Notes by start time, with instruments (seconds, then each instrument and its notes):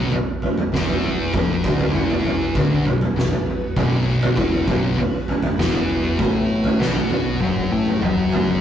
Already playing: picked electric bass B0, distorted electric guitar B1 B2, string machine B3 F#4 B4
0.12 muted picked electric bass stroke, muted distorted electric guitar stroke, floor tom
0.42 floor tom
0.58 floor tom, mid tom
0.72 picked electric bass E1, distorted electric guitar E2 E3, snare, mid tom
0.88 floor tom
1.02 mid tom
1.33 picked electric bass F1, distorted electric guitar F2 F3, kick, floor tom
1.64 picked electric bass D1, distorted electric guitar D2 D3, kick
1.80 floor tom
1.93 picked electric bass E1, distorted electric guitar E2 E3, floor tom
2.10 floor tom
2.25 floor tom, mid tom
2.55 picked electric bass D1, distorted electric guitar D2 D3, kick, floor tom
2.85 picked electric bass B0, distorted electric guitar B1, floor tom
3.01 floor tom, mid tom
3.16 picked electric bass B0, distorted electric guitar B1, snare, mid tom
3.31 floor tom
3.46 mid tom
3.76 picked electric bass B0, distorted electric guitar B1 B2, kick, floor tom
4.22 floor tom
4.37 picked electric bass E1, distorted electric guitar E2 E3, kick, floor tom
4.52 floor tom
4.68 picked electric bass B0, distorted electric guitar B1 B2, kick, floor tom, mid tom
4.97 muted picked electric bass stroke, muted distorted electric guitar stroke, floor tom
5.28 floor tom
5.43 floor tom, mid tom
5.58 picked electric bass E1, distorted electric guitar E2 E3, snare, mid tom
5.73 floor tom
5.89 mid tom
6.19 picked electric bass A1, distorted electric guitar A2 A3, kick, floor tom
6.64 floor tom
6.79 picked electric bass B1, distorted electric guitar B2 B3, snare
6.94 floor tom
7.10 floor tom, mid tom
7.40 picked electric bass F#1, distorted electric guitar F#2 F#3, high tom
7.56 kick
7.71 picked electric bass A1, distorted electric guitar A2 A3
7.86 mid tom
8.01 picked electric bass F#1, distorted electric guitar F#2 F#3, mid tom
8.32 floor tom
8.47 floor tom